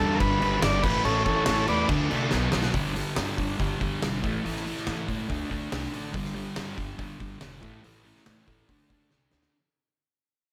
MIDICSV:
0, 0, Header, 1, 5, 480
1, 0, Start_track
1, 0, Tempo, 424328
1, 1181, Time_signature, 4, 2, 24, 8
1, 11909, End_track
2, 0, Start_track
2, 0, Title_t, "Transistor combo organ"
2, 0, Program_c, 0, 18
2, 0, Note_on_c, 0, 69, 98
2, 170, Note_on_c, 0, 70, 72
2, 203, Note_off_c, 0, 70, 0
2, 217, Note_off_c, 0, 69, 0
2, 222, Note_on_c, 0, 71, 104
2, 687, Note_off_c, 0, 71, 0
2, 727, Note_on_c, 0, 74, 84
2, 934, Note_on_c, 0, 71, 99
2, 947, Note_off_c, 0, 74, 0
2, 1170, Note_off_c, 0, 71, 0
2, 1184, Note_on_c, 0, 61, 75
2, 1184, Note_on_c, 0, 69, 93
2, 1394, Note_off_c, 0, 61, 0
2, 1402, Note_off_c, 0, 69, 0
2, 1408, Note_on_c, 0, 61, 72
2, 1416, Note_on_c, 0, 69, 90
2, 1630, Note_off_c, 0, 61, 0
2, 1638, Note_off_c, 0, 69, 0
2, 1643, Note_on_c, 0, 61, 82
2, 1652, Note_on_c, 0, 69, 90
2, 1874, Note_off_c, 0, 61, 0
2, 1888, Note_off_c, 0, 69, 0
2, 1905, Note_on_c, 0, 71, 88
2, 1906, Note_on_c, 0, 74, 110
2, 2125, Note_off_c, 0, 71, 0
2, 2135, Note_off_c, 0, 74, 0
2, 11909, End_track
3, 0, Start_track
3, 0, Title_t, "Distorted electric guitar"
3, 0, Program_c, 1, 30
3, 0, Note_on_c, 1, 43, 95
3, 0, Note_on_c, 1, 50, 92
3, 0, Note_on_c, 1, 55, 103
3, 197, Note_off_c, 1, 43, 0
3, 211, Note_off_c, 1, 50, 0
3, 211, Note_on_c, 1, 43, 110
3, 220, Note_off_c, 1, 55, 0
3, 225, Note_on_c, 1, 50, 98
3, 233, Note_on_c, 1, 55, 123
3, 453, Note_off_c, 1, 43, 0
3, 466, Note_off_c, 1, 50, 0
3, 467, Note_on_c, 1, 43, 95
3, 478, Note_off_c, 1, 55, 0
3, 480, Note_on_c, 1, 50, 91
3, 492, Note_on_c, 1, 55, 89
3, 690, Note_off_c, 1, 43, 0
3, 703, Note_off_c, 1, 50, 0
3, 704, Note_on_c, 1, 43, 96
3, 712, Note_off_c, 1, 55, 0
3, 717, Note_on_c, 1, 50, 92
3, 725, Note_on_c, 1, 55, 106
3, 928, Note_off_c, 1, 43, 0
3, 934, Note_off_c, 1, 50, 0
3, 939, Note_off_c, 1, 55, 0
3, 941, Note_on_c, 1, 45, 105
3, 955, Note_on_c, 1, 52, 117
3, 969, Note_on_c, 1, 57, 111
3, 1174, Note_off_c, 1, 45, 0
3, 1181, Note_off_c, 1, 52, 0
3, 1187, Note_on_c, 1, 45, 112
3, 1191, Note_off_c, 1, 57, 0
3, 1195, Note_on_c, 1, 52, 103
3, 1205, Note_on_c, 1, 57, 126
3, 1422, Note_off_c, 1, 45, 0
3, 1434, Note_off_c, 1, 52, 0
3, 1435, Note_on_c, 1, 45, 92
3, 1440, Note_off_c, 1, 57, 0
3, 1448, Note_on_c, 1, 52, 98
3, 1454, Note_on_c, 1, 57, 98
3, 1656, Note_off_c, 1, 45, 0
3, 1666, Note_off_c, 1, 52, 0
3, 1670, Note_on_c, 1, 45, 96
3, 1676, Note_off_c, 1, 57, 0
3, 1679, Note_on_c, 1, 52, 97
3, 1689, Note_on_c, 1, 57, 99
3, 1885, Note_off_c, 1, 45, 0
3, 1898, Note_off_c, 1, 52, 0
3, 1899, Note_on_c, 1, 45, 92
3, 1905, Note_off_c, 1, 57, 0
3, 1912, Note_on_c, 1, 52, 95
3, 1919, Note_on_c, 1, 57, 99
3, 2125, Note_off_c, 1, 45, 0
3, 2128, Note_off_c, 1, 57, 0
3, 2130, Note_on_c, 1, 50, 107
3, 2131, Note_off_c, 1, 52, 0
3, 2141, Note_on_c, 1, 57, 106
3, 2149, Note_on_c, 1, 62, 114
3, 2358, Note_off_c, 1, 50, 0
3, 2365, Note_off_c, 1, 57, 0
3, 2372, Note_off_c, 1, 62, 0
3, 2372, Note_on_c, 1, 50, 80
3, 2378, Note_on_c, 1, 57, 87
3, 2386, Note_on_c, 1, 62, 89
3, 2601, Note_off_c, 1, 50, 0
3, 2604, Note_off_c, 1, 57, 0
3, 2608, Note_off_c, 1, 62, 0
3, 2610, Note_on_c, 1, 47, 109
3, 2621, Note_on_c, 1, 54, 98
3, 2623, Note_on_c, 1, 59, 113
3, 2845, Note_off_c, 1, 47, 0
3, 2854, Note_off_c, 1, 54, 0
3, 2858, Note_on_c, 1, 47, 83
3, 2861, Note_off_c, 1, 59, 0
3, 2867, Note_on_c, 1, 54, 92
3, 2874, Note_on_c, 1, 59, 97
3, 3084, Note_off_c, 1, 47, 0
3, 3089, Note_off_c, 1, 54, 0
3, 3089, Note_on_c, 1, 43, 87
3, 3092, Note_off_c, 1, 59, 0
3, 3101, Note_on_c, 1, 50, 100
3, 3109, Note_on_c, 1, 55, 116
3, 3323, Note_off_c, 1, 43, 0
3, 3333, Note_off_c, 1, 50, 0
3, 3336, Note_on_c, 1, 43, 88
3, 3345, Note_off_c, 1, 55, 0
3, 3346, Note_on_c, 1, 50, 80
3, 3358, Note_on_c, 1, 55, 93
3, 3563, Note_off_c, 1, 43, 0
3, 3572, Note_off_c, 1, 50, 0
3, 3577, Note_on_c, 1, 43, 78
3, 3586, Note_on_c, 1, 50, 82
3, 3593, Note_off_c, 1, 55, 0
3, 3607, Note_on_c, 1, 55, 87
3, 3808, Note_off_c, 1, 43, 0
3, 3819, Note_off_c, 1, 50, 0
3, 3822, Note_on_c, 1, 43, 79
3, 3829, Note_off_c, 1, 55, 0
3, 3832, Note_on_c, 1, 50, 80
3, 3843, Note_on_c, 1, 55, 92
3, 4036, Note_off_c, 1, 43, 0
3, 4050, Note_on_c, 1, 43, 106
3, 4054, Note_off_c, 1, 50, 0
3, 4062, Note_off_c, 1, 55, 0
3, 4067, Note_on_c, 1, 50, 102
3, 4076, Note_on_c, 1, 55, 113
3, 4282, Note_off_c, 1, 43, 0
3, 4295, Note_off_c, 1, 50, 0
3, 4295, Note_on_c, 1, 43, 74
3, 4302, Note_off_c, 1, 55, 0
3, 4308, Note_on_c, 1, 50, 90
3, 4316, Note_on_c, 1, 55, 95
3, 4518, Note_off_c, 1, 43, 0
3, 4529, Note_off_c, 1, 50, 0
3, 4532, Note_on_c, 1, 43, 82
3, 4542, Note_off_c, 1, 55, 0
3, 4542, Note_on_c, 1, 50, 92
3, 4555, Note_on_c, 1, 55, 90
3, 4763, Note_off_c, 1, 43, 0
3, 4764, Note_off_c, 1, 50, 0
3, 4768, Note_on_c, 1, 45, 93
3, 4774, Note_off_c, 1, 55, 0
3, 4783, Note_on_c, 1, 52, 96
3, 4795, Note_on_c, 1, 57, 106
3, 5009, Note_off_c, 1, 45, 0
3, 5014, Note_off_c, 1, 52, 0
3, 5022, Note_on_c, 1, 45, 91
3, 5026, Note_off_c, 1, 57, 0
3, 5028, Note_on_c, 1, 52, 101
3, 5040, Note_on_c, 1, 57, 107
3, 5252, Note_off_c, 1, 45, 0
3, 5265, Note_on_c, 1, 45, 81
3, 5266, Note_off_c, 1, 52, 0
3, 5275, Note_off_c, 1, 57, 0
3, 5280, Note_on_c, 1, 52, 84
3, 5289, Note_on_c, 1, 57, 94
3, 5496, Note_off_c, 1, 45, 0
3, 5509, Note_on_c, 1, 45, 91
3, 5510, Note_off_c, 1, 52, 0
3, 5524, Note_off_c, 1, 57, 0
3, 5524, Note_on_c, 1, 52, 85
3, 5538, Note_on_c, 1, 57, 87
3, 5734, Note_off_c, 1, 45, 0
3, 5746, Note_off_c, 1, 52, 0
3, 5747, Note_on_c, 1, 45, 78
3, 5755, Note_off_c, 1, 57, 0
3, 5760, Note_on_c, 1, 52, 89
3, 5769, Note_on_c, 1, 57, 91
3, 5972, Note_off_c, 1, 45, 0
3, 5977, Note_off_c, 1, 57, 0
3, 5978, Note_off_c, 1, 52, 0
3, 5980, Note_on_c, 1, 50, 99
3, 5990, Note_on_c, 1, 57, 101
3, 6004, Note_on_c, 1, 62, 102
3, 6204, Note_off_c, 1, 50, 0
3, 6214, Note_off_c, 1, 57, 0
3, 6217, Note_on_c, 1, 50, 75
3, 6222, Note_off_c, 1, 62, 0
3, 6227, Note_on_c, 1, 57, 93
3, 6235, Note_on_c, 1, 62, 80
3, 6437, Note_off_c, 1, 50, 0
3, 6451, Note_on_c, 1, 50, 82
3, 6455, Note_off_c, 1, 57, 0
3, 6457, Note_off_c, 1, 62, 0
3, 6469, Note_on_c, 1, 57, 87
3, 6471, Note_on_c, 1, 62, 104
3, 6689, Note_off_c, 1, 50, 0
3, 6698, Note_off_c, 1, 57, 0
3, 6702, Note_on_c, 1, 50, 88
3, 6710, Note_off_c, 1, 62, 0
3, 6711, Note_on_c, 1, 57, 85
3, 6724, Note_on_c, 1, 62, 88
3, 6928, Note_on_c, 1, 43, 96
3, 6930, Note_off_c, 1, 50, 0
3, 6935, Note_off_c, 1, 57, 0
3, 6941, Note_off_c, 1, 62, 0
3, 6943, Note_on_c, 1, 50, 100
3, 6951, Note_on_c, 1, 55, 106
3, 7161, Note_off_c, 1, 43, 0
3, 7166, Note_off_c, 1, 50, 0
3, 7172, Note_off_c, 1, 55, 0
3, 7175, Note_on_c, 1, 43, 88
3, 7180, Note_on_c, 1, 50, 87
3, 7185, Note_on_c, 1, 55, 96
3, 7404, Note_off_c, 1, 43, 0
3, 7415, Note_off_c, 1, 50, 0
3, 7418, Note_on_c, 1, 43, 81
3, 7423, Note_off_c, 1, 55, 0
3, 7429, Note_on_c, 1, 50, 88
3, 7437, Note_on_c, 1, 55, 86
3, 7641, Note_off_c, 1, 43, 0
3, 7645, Note_off_c, 1, 50, 0
3, 7654, Note_on_c, 1, 43, 84
3, 7658, Note_off_c, 1, 55, 0
3, 7658, Note_on_c, 1, 50, 78
3, 7672, Note_on_c, 1, 55, 91
3, 7876, Note_off_c, 1, 43, 0
3, 7890, Note_on_c, 1, 43, 96
3, 7895, Note_off_c, 1, 50, 0
3, 7901, Note_off_c, 1, 55, 0
3, 7909, Note_on_c, 1, 50, 98
3, 7915, Note_on_c, 1, 55, 111
3, 8118, Note_off_c, 1, 43, 0
3, 8131, Note_on_c, 1, 43, 84
3, 8133, Note_off_c, 1, 50, 0
3, 8141, Note_off_c, 1, 55, 0
3, 8146, Note_on_c, 1, 50, 82
3, 8155, Note_on_c, 1, 55, 87
3, 8345, Note_off_c, 1, 43, 0
3, 8355, Note_off_c, 1, 50, 0
3, 8358, Note_on_c, 1, 43, 87
3, 8365, Note_off_c, 1, 55, 0
3, 8369, Note_on_c, 1, 50, 92
3, 8378, Note_on_c, 1, 55, 96
3, 8599, Note_off_c, 1, 43, 0
3, 8599, Note_off_c, 1, 50, 0
3, 8604, Note_on_c, 1, 45, 88
3, 8609, Note_off_c, 1, 55, 0
3, 8613, Note_on_c, 1, 52, 88
3, 8621, Note_on_c, 1, 57, 98
3, 8842, Note_off_c, 1, 45, 0
3, 8850, Note_off_c, 1, 52, 0
3, 8856, Note_on_c, 1, 45, 93
3, 8862, Note_off_c, 1, 57, 0
3, 8863, Note_on_c, 1, 52, 103
3, 8876, Note_on_c, 1, 57, 109
3, 9074, Note_off_c, 1, 45, 0
3, 9088, Note_on_c, 1, 45, 74
3, 9091, Note_off_c, 1, 52, 0
3, 9102, Note_off_c, 1, 57, 0
3, 9104, Note_on_c, 1, 52, 90
3, 9116, Note_on_c, 1, 57, 87
3, 9320, Note_off_c, 1, 45, 0
3, 9332, Note_off_c, 1, 52, 0
3, 9333, Note_on_c, 1, 45, 79
3, 9334, Note_off_c, 1, 57, 0
3, 9345, Note_on_c, 1, 52, 92
3, 9348, Note_on_c, 1, 57, 86
3, 9558, Note_off_c, 1, 45, 0
3, 9568, Note_off_c, 1, 52, 0
3, 9571, Note_on_c, 1, 45, 74
3, 9581, Note_off_c, 1, 57, 0
3, 9582, Note_on_c, 1, 52, 79
3, 9595, Note_on_c, 1, 57, 90
3, 9805, Note_off_c, 1, 45, 0
3, 9810, Note_off_c, 1, 52, 0
3, 9817, Note_off_c, 1, 57, 0
3, 9824, Note_on_c, 1, 50, 87
3, 9841, Note_on_c, 1, 57, 89
3, 9849, Note_on_c, 1, 62, 98
3, 10051, Note_off_c, 1, 50, 0
3, 10062, Note_off_c, 1, 57, 0
3, 10065, Note_on_c, 1, 50, 75
3, 10075, Note_on_c, 1, 57, 86
3, 10078, Note_off_c, 1, 62, 0
3, 10091, Note_on_c, 1, 62, 88
3, 10279, Note_off_c, 1, 50, 0
3, 10289, Note_off_c, 1, 57, 0
3, 10292, Note_on_c, 1, 50, 84
3, 10300, Note_off_c, 1, 62, 0
3, 10303, Note_on_c, 1, 57, 94
3, 10314, Note_on_c, 1, 62, 88
3, 10507, Note_off_c, 1, 50, 0
3, 10516, Note_off_c, 1, 57, 0
3, 10520, Note_on_c, 1, 50, 84
3, 10525, Note_off_c, 1, 62, 0
3, 10530, Note_on_c, 1, 57, 81
3, 10539, Note_on_c, 1, 62, 90
3, 10759, Note_off_c, 1, 50, 0
3, 10764, Note_off_c, 1, 57, 0
3, 10769, Note_off_c, 1, 62, 0
3, 11909, End_track
4, 0, Start_track
4, 0, Title_t, "Upright bass"
4, 0, Program_c, 2, 32
4, 0, Note_on_c, 2, 40, 99
4, 190, Note_off_c, 2, 40, 0
4, 229, Note_on_c, 2, 31, 105
4, 426, Note_off_c, 2, 31, 0
4, 463, Note_on_c, 2, 31, 94
4, 663, Note_off_c, 2, 31, 0
4, 704, Note_on_c, 2, 31, 101
4, 903, Note_off_c, 2, 31, 0
4, 945, Note_on_c, 2, 33, 95
4, 1143, Note_off_c, 2, 33, 0
4, 1175, Note_on_c, 2, 33, 98
4, 1377, Note_off_c, 2, 33, 0
4, 1426, Note_on_c, 2, 33, 94
4, 1624, Note_off_c, 2, 33, 0
4, 1666, Note_on_c, 2, 33, 93
4, 1863, Note_off_c, 2, 33, 0
4, 1907, Note_on_c, 2, 40, 92
4, 2104, Note_off_c, 2, 40, 0
4, 2140, Note_on_c, 2, 38, 100
4, 2340, Note_off_c, 2, 38, 0
4, 2390, Note_on_c, 2, 48, 87
4, 2586, Note_off_c, 2, 48, 0
4, 2630, Note_on_c, 2, 35, 100
4, 2826, Note_off_c, 2, 35, 0
4, 2861, Note_on_c, 2, 35, 92
4, 3061, Note_off_c, 2, 35, 0
4, 3103, Note_on_c, 2, 31, 93
4, 3397, Note_off_c, 2, 31, 0
4, 3584, Note_on_c, 2, 43, 89
4, 3730, Note_off_c, 2, 43, 0
4, 3830, Note_on_c, 2, 31, 85
4, 3974, Note_off_c, 2, 31, 0
4, 4069, Note_on_c, 2, 31, 96
4, 4214, Note_off_c, 2, 31, 0
4, 4310, Note_on_c, 2, 31, 84
4, 4455, Note_off_c, 2, 31, 0
4, 4552, Note_on_c, 2, 28, 91
4, 4797, Note_off_c, 2, 28, 0
4, 4797, Note_on_c, 2, 33, 87
4, 4940, Note_off_c, 2, 33, 0
4, 5035, Note_on_c, 2, 33, 100
4, 5327, Note_off_c, 2, 33, 0
4, 5512, Note_on_c, 2, 45, 85
4, 5657, Note_off_c, 2, 45, 0
4, 5755, Note_on_c, 2, 37, 83
4, 5899, Note_off_c, 2, 37, 0
4, 5992, Note_on_c, 2, 38, 90
4, 6137, Note_off_c, 2, 38, 0
4, 6237, Note_on_c, 2, 38, 85
4, 6381, Note_off_c, 2, 38, 0
4, 6470, Note_on_c, 2, 36, 96
4, 6616, Note_off_c, 2, 36, 0
4, 6708, Note_on_c, 2, 33, 88
4, 6955, Note_on_c, 2, 31, 95
4, 6972, Note_off_c, 2, 33, 0
4, 7247, Note_off_c, 2, 31, 0
4, 7429, Note_on_c, 2, 43, 88
4, 7576, Note_off_c, 2, 43, 0
4, 7668, Note_on_c, 2, 31, 83
4, 7815, Note_off_c, 2, 31, 0
4, 7908, Note_on_c, 2, 31, 90
4, 8055, Note_off_c, 2, 31, 0
4, 8151, Note_on_c, 2, 31, 85
4, 8297, Note_off_c, 2, 31, 0
4, 8379, Note_on_c, 2, 28, 92
4, 8627, Note_off_c, 2, 28, 0
4, 8627, Note_on_c, 2, 33, 83
4, 8775, Note_off_c, 2, 33, 0
4, 8867, Note_on_c, 2, 33, 92
4, 9162, Note_off_c, 2, 33, 0
4, 9355, Note_on_c, 2, 45, 87
4, 9500, Note_off_c, 2, 45, 0
4, 9589, Note_on_c, 2, 33, 85
4, 9736, Note_off_c, 2, 33, 0
4, 9832, Note_on_c, 2, 38, 86
4, 9978, Note_off_c, 2, 38, 0
4, 10071, Note_on_c, 2, 38, 85
4, 10217, Note_off_c, 2, 38, 0
4, 10322, Note_on_c, 2, 36, 89
4, 10464, Note_off_c, 2, 36, 0
4, 10546, Note_on_c, 2, 38, 82
4, 10694, Note_off_c, 2, 38, 0
4, 11909, End_track
5, 0, Start_track
5, 0, Title_t, "Drums"
5, 227, Note_on_c, 9, 49, 82
5, 231, Note_on_c, 9, 36, 117
5, 340, Note_off_c, 9, 49, 0
5, 345, Note_off_c, 9, 36, 0
5, 473, Note_on_c, 9, 49, 72
5, 586, Note_off_c, 9, 49, 0
5, 707, Note_on_c, 9, 38, 127
5, 711, Note_on_c, 9, 49, 92
5, 820, Note_off_c, 9, 38, 0
5, 824, Note_off_c, 9, 49, 0
5, 946, Note_on_c, 9, 36, 122
5, 948, Note_on_c, 9, 49, 114
5, 1059, Note_off_c, 9, 36, 0
5, 1061, Note_off_c, 9, 49, 0
5, 1188, Note_on_c, 9, 49, 88
5, 1301, Note_off_c, 9, 49, 0
5, 1420, Note_on_c, 9, 49, 64
5, 1424, Note_on_c, 9, 36, 86
5, 1533, Note_off_c, 9, 49, 0
5, 1537, Note_off_c, 9, 36, 0
5, 1650, Note_on_c, 9, 38, 122
5, 1655, Note_on_c, 9, 49, 91
5, 1764, Note_off_c, 9, 38, 0
5, 1768, Note_off_c, 9, 49, 0
5, 1896, Note_on_c, 9, 49, 69
5, 2009, Note_off_c, 9, 49, 0
5, 2137, Note_on_c, 9, 49, 86
5, 2138, Note_on_c, 9, 36, 113
5, 2251, Note_off_c, 9, 49, 0
5, 2252, Note_off_c, 9, 36, 0
5, 2384, Note_on_c, 9, 49, 73
5, 2497, Note_off_c, 9, 49, 0
5, 2610, Note_on_c, 9, 38, 76
5, 2724, Note_off_c, 9, 38, 0
5, 2849, Note_on_c, 9, 38, 108
5, 2962, Note_off_c, 9, 38, 0
5, 2969, Note_on_c, 9, 38, 105
5, 3083, Note_off_c, 9, 38, 0
5, 3094, Note_on_c, 9, 46, 78
5, 3100, Note_on_c, 9, 36, 109
5, 3208, Note_off_c, 9, 46, 0
5, 3213, Note_off_c, 9, 36, 0
5, 3348, Note_on_c, 9, 46, 58
5, 3461, Note_off_c, 9, 46, 0
5, 3579, Note_on_c, 9, 38, 113
5, 3584, Note_on_c, 9, 46, 75
5, 3693, Note_off_c, 9, 38, 0
5, 3697, Note_off_c, 9, 46, 0
5, 3827, Note_on_c, 9, 36, 87
5, 3833, Note_on_c, 9, 46, 58
5, 3940, Note_off_c, 9, 36, 0
5, 3946, Note_off_c, 9, 46, 0
5, 4069, Note_on_c, 9, 36, 103
5, 4072, Note_on_c, 9, 46, 69
5, 4182, Note_off_c, 9, 36, 0
5, 4185, Note_off_c, 9, 46, 0
5, 4311, Note_on_c, 9, 36, 87
5, 4316, Note_on_c, 9, 46, 56
5, 4424, Note_off_c, 9, 36, 0
5, 4429, Note_off_c, 9, 46, 0
5, 4553, Note_on_c, 9, 38, 120
5, 4557, Note_on_c, 9, 46, 76
5, 4666, Note_off_c, 9, 38, 0
5, 4671, Note_off_c, 9, 46, 0
5, 4794, Note_on_c, 9, 36, 113
5, 4806, Note_on_c, 9, 46, 57
5, 4908, Note_off_c, 9, 36, 0
5, 4919, Note_off_c, 9, 46, 0
5, 5043, Note_on_c, 9, 46, 71
5, 5156, Note_off_c, 9, 46, 0
5, 5161, Note_on_c, 9, 38, 32
5, 5274, Note_off_c, 9, 38, 0
5, 5283, Note_on_c, 9, 46, 56
5, 5390, Note_on_c, 9, 38, 36
5, 5396, Note_off_c, 9, 46, 0
5, 5503, Note_off_c, 9, 38, 0
5, 5508, Note_on_c, 9, 38, 117
5, 5512, Note_on_c, 9, 46, 77
5, 5621, Note_off_c, 9, 38, 0
5, 5625, Note_off_c, 9, 46, 0
5, 5753, Note_on_c, 9, 36, 89
5, 5760, Note_on_c, 9, 46, 62
5, 5866, Note_off_c, 9, 36, 0
5, 5873, Note_off_c, 9, 46, 0
5, 5993, Note_on_c, 9, 36, 110
5, 6002, Note_on_c, 9, 46, 73
5, 6106, Note_off_c, 9, 36, 0
5, 6115, Note_off_c, 9, 46, 0
5, 6234, Note_on_c, 9, 36, 85
5, 6241, Note_on_c, 9, 46, 60
5, 6347, Note_off_c, 9, 36, 0
5, 6354, Note_off_c, 9, 46, 0
5, 6474, Note_on_c, 9, 38, 119
5, 6478, Note_on_c, 9, 46, 88
5, 6587, Note_off_c, 9, 38, 0
5, 6591, Note_off_c, 9, 46, 0
5, 6713, Note_on_c, 9, 46, 66
5, 6827, Note_off_c, 9, 46, 0
5, 6948, Note_on_c, 9, 36, 114
5, 6952, Note_on_c, 9, 46, 78
5, 7061, Note_off_c, 9, 36, 0
5, 7065, Note_off_c, 9, 46, 0
5, 7072, Note_on_c, 9, 38, 33
5, 7185, Note_off_c, 9, 38, 0
5, 7199, Note_on_c, 9, 46, 58
5, 7312, Note_off_c, 9, 46, 0
5, 7424, Note_on_c, 9, 38, 109
5, 7428, Note_on_c, 9, 46, 78
5, 7537, Note_off_c, 9, 38, 0
5, 7541, Note_off_c, 9, 46, 0
5, 7667, Note_on_c, 9, 36, 90
5, 7670, Note_on_c, 9, 46, 58
5, 7780, Note_off_c, 9, 36, 0
5, 7783, Note_off_c, 9, 46, 0
5, 7905, Note_on_c, 9, 46, 70
5, 7907, Note_on_c, 9, 36, 106
5, 8018, Note_off_c, 9, 46, 0
5, 8020, Note_off_c, 9, 36, 0
5, 8149, Note_on_c, 9, 36, 85
5, 8155, Note_on_c, 9, 46, 56
5, 8262, Note_off_c, 9, 36, 0
5, 8268, Note_off_c, 9, 46, 0
5, 8382, Note_on_c, 9, 38, 115
5, 8386, Note_on_c, 9, 46, 78
5, 8495, Note_off_c, 9, 38, 0
5, 8499, Note_off_c, 9, 46, 0
5, 8630, Note_on_c, 9, 36, 104
5, 8632, Note_on_c, 9, 46, 55
5, 8743, Note_off_c, 9, 36, 0
5, 8745, Note_off_c, 9, 46, 0
5, 8870, Note_on_c, 9, 46, 73
5, 8983, Note_off_c, 9, 46, 0
5, 9106, Note_on_c, 9, 46, 51
5, 9219, Note_off_c, 9, 46, 0
5, 9234, Note_on_c, 9, 38, 33
5, 9346, Note_off_c, 9, 38, 0
5, 9346, Note_on_c, 9, 38, 108
5, 9350, Note_on_c, 9, 46, 72
5, 9459, Note_off_c, 9, 38, 0
5, 9463, Note_off_c, 9, 46, 0
5, 9588, Note_on_c, 9, 46, 56
5, 9590, Note_on_c, 9, 36, 88
5, 9701, Note_off_c, 9, 46, 0
5, 9703, Note_off_c, 9, 36, 0
5, 9826, Note_on_c, 9, 46, 75
5, 9830, Note_on_c, 9, 36, 98
5, 9939, Note_off_c, 9, 46, 0
5, 9943, Note_off_c, 9, 36, 0
5, 10069, Note_on_c, 9, 36, 89
5, 10073, Note_on_c, 9, 46, 55
5, 10182, Note_off_c, 9, 36, 0
5, 10186, Note_off_c, 9, 46, 0
5, 10302, Note_on_c, 9, 38, 59
5, 10415, Note_off_c, 9, 38, 0
5, 10537, Note_on_c, 9, 38, 89
5, 10650, Note_off_c, 9, 38, 0
5, 10658, Note_on_c, 9, 38, 88
5, 10771, Note_off_c, 9, 38, 0
5, 11909, End_track
0, 0, End_of_file